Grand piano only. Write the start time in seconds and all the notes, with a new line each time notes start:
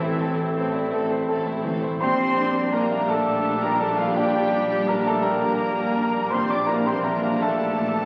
Already playing: E3 A3 E4 A4 C5 D5 E5
0.03 C5
0.21 A3
0.39 A4
0.57 C5
0.74 D5
0.94 A4
1.12 C5
1.29 A4
1.46 A3
1.64 E3
1.82 C5
2.01 A#2 C5 G5 C6
2.19 D5
2.37 D4
2.55 G4
2.73 A#4 D5 A#5
2.91 E5
3.09 A4 D5 A5
3.26 G4
3.43 D5
3.62 G4 A#4 A#5
3.80 D4 A4 A5
3.99 F4 D5 F5
4.15 A#2 G4 D5 G5
4.34 G4
4.51 D4
4.70 G4
4.88 A#4 D5 A#5
5.07 A4 E5 A5
5.22 A#4 D5 G5 A#5
5.42 G4
5.61 D5
5.79 G4
5.96 D4
6.14 D5
6.30 A#2 C5 C6
6.49 D5 D6
6.67 E4 A#4 A#5
6.85 G4 C5 C6
7.04 A#4 E5 A#5
7.22 F5
7.42 A4 E5 A5
7.60 D5
7.78 E5
7.98 G4